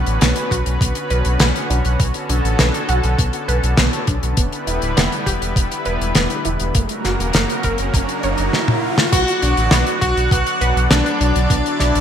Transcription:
Already playing: analog synth pad D3 B3 C#4 F#4 B4
0.06 analog synth bass A1, closed hi-hat
0.21 analog synth bass B1, synth arpeggio sound B3, snare, closed hi-hat
0.36 closed hi-hat
0.51 analog synth bass B1, synth arpeggio sound F#4, kick, closed hi-hat
0.66 analog synth bass B1, closed hi-hat
0.81 analog synth bass B1, synth arpeggio sound B3, kick, closed hi-hat
0.95 closed hi-hat
1.10 analog synth bass B1, synth arpeggio sound B4, closed hi-hat
1.25 analog synth bass B1, closed hi-hat
1.40 analog synth bass B1, synth arpeggio sound B3, snare, closed hi-hat
1.56 closed hi-hat
1.70 analog synth bass B1, synth arpeggio sound D4, closed hi-hat
1.85 analog synth bass B1, closed hi-hat
2.00 analog synth bass B1, synth arpeggio sound B3, analog synth pad A4, kick, closed hi-hat
2.14 closed hi-hat
2.29 analog synth bass B1, synth arpeggio sound D4, closed hi-hat
2.44 analog synth bass A1, closed hi-hat
2.59 analog synth bass B1, synth arpeggio sound B3, snare, closed hi-hat
2.74 closed hi-hat
2.89 analog synth bass B1, synth arpeggio sound F#4, closed hi-hat
3.03 analog synth bass B1, closed hi-hat
3.19 analog synth bass B1, synth arpeggio sound B3, kick, closed hi-hat
3.33 closed hi-hat
3.48 analog synth bass B1, synth arpeggio sound B4, closed hi-hat
3.63 analog synth bass B1, closed hi-hat
3.77 analog synth bass B1, synth arpeggio sound B3, snare, closed hi-hat
3.93 closed hi-hat
4.07 analog synth bass B1, synth arpeggio sound D4, kick, closed hi-hat
4.23 analog synth bass B1, closed hi-hat
4.37 analog synth bass E1, analog synth pad G3 B3 E4 B4, synth arpeggio sound B3, kick, closed hi-hat, riser
4.53 closed hi-hat
4.67 analog synth bass E1, synth arpeggio sound E4, closed hi-hat
4.82 analog synth bass D1, closed hi-hat
4.97 analog synth bass E1, synth arpeggio sound B3, snare, closed hi-hat
5.12 closed hi-hat
5.26 analog synth bass E1, synth arpeggio sound G4, kick, closed hi-hat
5.41 analog synth bass E1, closed hi-hat
5.56 analog synth bass E1, synth arpeggio sound B3, kick, closed hi-hat
5.72 closed hi-hat
5.85 analog synth bass E1, synth arpeggio sound B4, closed hi-hat
6.01 analog synth bass E1, closed hi-hat
6.15 analog synth bass E1, synth arpeggio sound B3, snare, closed hi-hat
6.30 closed hi-hat
6.45 analog synth bass E1, synth arpeggio sound E4, closed hi-hat
6.60 analog synth bass E1, closed hi-hat
6.75 analog synth bass F#1, analog synth pad C#3 F#3 A#3 F#4 A#4, synth arpeggio sound A#3, kick, closed hi-hat
6.89 closed hi-hat
7.04 analog synth bass F#1, synth arpeggio sound F#4, snare, closed hi-hat
7.19 analog synth bass E1, closed hi-hat
7.33 analog synth bass F#1, synth arpeggio sound A#3, snare, closed hi-hat
7.50 closed hi-hat
7.63 analog synth bass F#1, synth arpeggio sound A#4, kick, closed hi-hat
7.78 analog synth bass F#1, closed hi-hat
7.94 analog synth bass F#1, synth arpeggio sound A#3, kick, closed hi-hat
8.09 closed hi-hat
8.23 analog synth bass F#1, synth arpeggio sound C#5, closed hi-hat
8.38 analog synth bass F#1, closed hi-hat
8.53 snare
8.68 high tom
8.98 snare
9.12 analog synth bass B1, analog synth pad D3 F#3 B3 F#4 D5, synth arpeggio sound B3, electric grand piano F#4, string machine F#5, kick, closed hi-hat, crash
9.28 closed hi-hat
9.42 analog synth bass B1, synth arpeggio sound D4, closed hi-hat
9.57 analog synth bass A1, closed hi-hat
9.71 analog synth bass B1, synth arpeggio sound B3, snare, closed hi-hat
9.87 closed hi-hat
10.01 analog synth bass B1, electric grand piano F#4, synth arpeggio sound F#4, string machine F#5, kick, closed hi-hat
10.17 analog synth bass B1, closed hi-hat
10.31 analog synth bass B1, synth arpeggio sound B3, kick, closed hi-hat
10.47 closed hi-hat
10.61 analog synth bass B1, synth arpeggio sound B4, closed hi-hat
10.76 analog synth bass B1, closed hi-hat
10.90 analog synth bass B1, synth arpeggio sound B3, electric grand piano D4, string machine D5, snare, closed hi-hat
11.06 closed hi-hat
11.21 analog synth bass B1, synth arpeggio sound D4, closed hi-hat
11.36 analog synth bass B1, closed hi-hat
11.50 analog synth bass B1, synth arpeggio sound B3, analog synth pad E4, kick, closed hi-hat
11.66 closed hi-hat
11.80 analog synth bass B1, synth arpeggio sound D4, snare, closed hi-hat
11.95 analog synth bass A1, closed hi-hat

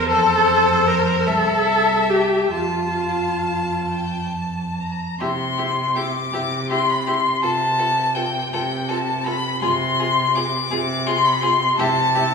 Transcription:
0.09 cello F2, viola A4, violin C5 A5
0.88 viola A#4, violin A#5
1.27 cello C2, viola A4, violin E5 A5
2.10 viola G4, violin G5
2.53 cello F2, viola F4, violin F5 A5
3.88 violin G5
4.35 violin A5
4.80 violin A#5
5.20 cello C3, viola E4, violin G4 C6
5.58 viola E4, violin G4
5.95 viola E4, violin G4 D6
6.33 cello C3, viola E4, violin G4
6.70 viola E4, violin G4 C6
6.90 violin B5
7.07 viola E4, violin G4 C6
7.43 cello C3, viola F4, violin A4 A5
7.79 viola F4, violin A4
8.15 viola F4, violin A4 G5
8.52 cello C3, viola F4, violin A4 G5
8.89 viola F4, violin A4 A5
9.25 viola F4, violin A4 B5
9.62 cello C3, viola F4, violin G#4 C6
9.99 viola F4, violin G#4
10.35 viola F4, violin G#4 D6
10.71 cello C3, viola F4, violin G#4
11.06 viola F4, violin G#4 C6
11.25 violin B5
11.42 viola F4, violin G#4 C6
11.78 cello C3, viola E4, violin G4 A5
12.15 viola E4, violin G4

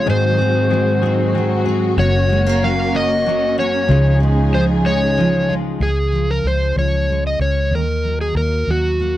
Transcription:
Already playing: steel-string acoustic guitar G#3 C4, string section G#3
0.06 fingered electric bass G#1, clean electric guitar G#2 D#3 F#3 G#3 C4 G#4, string section D#3 F#3 F#4
0.10 electric slide guitar C5
0.37 clean electric guitar F#3 G#3 C4 G#4
0.69 clean electric guitar F#3 G#3 C4 G#4
1.02 clean electric guitar G#2 D#3 F#3 G#3 C4 G#4
1.33 clean electric guitar F#3 G#3 C4 G#4
1.65 clean electric guitar F#3 G#3 C4 G#4
1.97 fingered electric bass F#1, clean electric guitar F#2 C#3 F#3 A#3 C#4 F#4, string section A#3 C#4, electric slide guitar C#5
2.29 clean electric guitar F#3 A#3 C#4 F#4, steel-string acoustic guitar G#3
2.46 steel-string acoustic guitar A#3
2.62 clean electric guitar F#3 A#3 C#4 F#4, electric slide guitar F5
2.94 clean electric guitar F#2 C#3 F#3 A#3 C#4 F#4, electric slide guitar D#5
3.26 clean electric guitar F#3 A#3 C#4 F#4
3.58 clean electric guitar F#3 A#3 C#4 F#4, electric slide guitar C#5
3.89 fingered electric bass C#2, clean electric guitar C#3 F3 G#3 D#4 F4, string section F3 G#3 D#4 G#4
4.21 clean electric guitar G#3 D#4 F4
4.53 clean electric guitar F3 G#3 D#4 F4, electric slide guitar C5
4.85 clean electric guitar C#3 F3 G#3 D#4 F4, electric slide guitar C#5
5.17 clean electric guitar F3 G#3 D#4 F4
5.49 clean electric guitar G#3 D#4 F4
5.80 fingered electric bass C#2, steel-string acoustic guitar C#3, electric slide guitar G#4
6.12 steel-string acoustic guitar F3
6.31 electric slide guitar A#4
6.44 fingered electric bass C#2, steel-string acoustic guitar G#3, electric slide guitar C5
6.76 fingered electric bass C#2, steel-string acoustic guitar F3, electric slide guitar C#5
7.09 steel-string acoustic guitar G#3
7.27 electric slide guitar D#5
7.39 fingered electric bass C#2, steel-string acoustic guitar C#4, electric slide guitar C#5
7.71 fingered electric bass D#2, steel-string acoustic guitar D#3, electric slide guitar A#4
8.05 steel-string acoustic guitar F#3
8.21 electric slide guitar G#4
8.35 fingered electric bass D#2, steel-string acoustic guitar A#3, electric slide guitar A#4
8.67 fingered electric bass D#2, steel-string acoustic guitar F#3, electric slide guitar F#4
9.00 steel-string acoustic guitar A#3

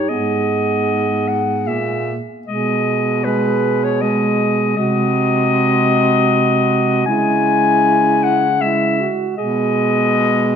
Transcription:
Already playing: clarinet D#4 C#5, alto saxophone G4
0.09 baritone saxophone G#2, clarinet B3 D#5, alto saxophone G#4
1.28 clarinet F#5
1.67 baritone saxophone A#2, clarinet A#3 E5
2.47 baritone saxophone B2, clarinet G#3 D#5, alto saxophone G#4
3.24 clarinet G#3 B4, alto saxophone G#4
3.84 clarinet C#5
4.02 clarinet G#3 D#5, alto saxophone G#4
4.76 baritone saxophone C3, clarinet G#3 D#5, alto saxophone F#4
7.06 baritone saxophone C#3, clarinet G#3 G#5, alto saxophone E4
8.23 clarinet F#5
8.60 clarinet G#3 E5, alto saxophone E4
9.00 alto saxophone F#4
9.37 baritone saxophone B2, clarinet G#3 D#5, alto saxophone G#4

